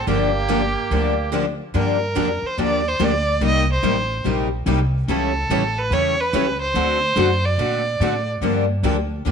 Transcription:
0.07 upright bass G1, steel-string acoustic guitar D3 F3 A#3 D4 G4, accordion A#3, violin G4
0.48 steel-string acoustic guitar D3 F3 A#3 D4 G4
0.90 upright bass D2, steel-string acoustic guitar D3 F3 A#3 D4 G4
1.32 steel-string acoustic guitar D3 F3 A#3 D4 G4
1.74 upright bass G2, steel-string acoustic guitar D3 F3 A#3 D4 G4, violin A#4
2.15 upright bass F2, steel-string acoustic guitar D3 F3 A#3 D4 G4
2.42 violin C5, muted upright bass stroke
2.58 upright bass D#2, steel-string acoustic guitar D3 F3 A#3 D4 G4
2.62 violin D5
2.88 violin C5
3.00 upright bass D2, steel-string acoustic guitar D3 F3 A#3 D4 G4
3.04 violin D5
3.41 upright bass C2, steel-string acoustic guitar C3 G3 A#3 D#4 G4
3.46 violin D#5
3.73 violin C5
3.83 upright bass A1, steel-string acoustic guitar C3 G3 A#3 D#4 G4
4.25 upright bass A#1, steel-string acoustic guitar C3 G3 A#3 D#4 G4
4.66 upright bass C2, steel-string acoustic guitar C3 G3 A#3 D#4 G4
5.08 upright bass C#2, steel-string acoustic guitar C#3 E3 G3 A3 C#4 E4 G4 A4 C#5, violin A4
5.50 upright bass A1, steel-string acoustic guitar C#3 E3 G3 A3 C#4 E4 G4 A4 C#5
5.78 violin B4
5.90 upright bass E2, steel-string acoustic guitar C#3 E3 G3 A3 C#4 E4 G4 A4 C#5, violin C#5
6.20 violin B4
6.33 upright bass C#2, steel-string acoustic guitar C#3 E3 G3 A3 C#4 E4 G4 A4 C#5
6.62 violin C5
6.74 upright bass D2, steel-string acoustic guitar D3 A3 C4 F#4 A4
7.16 upright bass F#2, steel-string acoustic guitar D3 A3 C4 F#4 A4
7.45 violin D5
7.58 upright bass A#2, steel-string acoustic guitar D3 A3 C4 F#4 A4
8.00 upright bass A2, steel-string acoustic guitar D3 A3 C4 F#4 A4
8.41 upright bass G2, steel-string acoustic guitar D3 F3 A#3 D4 G4
8.83 upright bass D2, steel-string acoustic guitar D3 F3 A#3 D4 G4
9.26 upright bass F2, steel-string acoustic guitar D3 F3 A#3 D4 G4

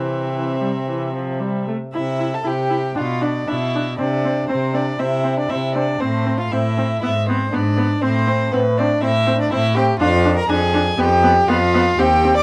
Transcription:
Already playing: cello C3, viola E3, violin C4 E5
0.34 viola E3
0.61 viola G3
0.87 viola E3
1.14 viola F3
1.40 viola G3
1.68 viola A3
1.94 cello C3, viola E4, violin E4 E5
2.19 viola E4
2.34 violin A4 A5
2.44 cello C3, viola E4, violin G4 G5
2.70 viola E4
2.95 cello B2, viola D4, violin F4 F5
3.21 viola D4, violin D4 D5
3.47 cello B2, viola D4, violin E4 E5
3.75 viola D4
3.98 cello C3, viola C4, violin D4 D5
4.24 viola C4
4.49 cello C3, viola C4, violin C4 C5
4.74 viola C4, violin D4 D5
4.99 cello C3, viola C4, violin E4 E5
5.24 viola C4
5.37 violin D4 D5
5.49 cello C3, viola C4, violin E4 E5
5.75 viola C4, violin D4 D5
6.00 cello A2, violin C4 C5, viola C4
6.26 viola C4
6.38 violin F4 F5
6.52 cello A2, viola C4, violin E4 E5
6.77 viola C4
7.01 cello G#2, viola B3, violin E4 E5
7.26 viola B3, violin C4 C5
7.52 cello G#2, viola B3, violin D4 D5
7.77 viola B3
8.02 cello A2, violin C4 C5, viola C4
8.27 viola C4
8.51 cello A2, violin B3 B4, viola C4
8.77 viola C4, violin D4 D5
9.02 cello A2, viola C4, violin E4 E5
9.26 viola C4
9.38 violin D4 D5
9.51 cello A2, viola C4, violin E4 E5
9.75 viola C4, violin G4 G5
10.00 cello F2, viola D4, violin F4 F5
10.25 viola D4
10.37 violin A#4 A#5
10.49 cello F2, viola D4, violin G#4 G#5
10.74 viola D4
10.98 cello F2, viola B3, violin G4 G5
11.23 viola B3
11.48 cello F2, viola B3, violin F4 F5
11.74 viola B3
11.98 cello D#2, viola C4, violin G4 G5
12.24 viola C4
12.35 violin D5 D6

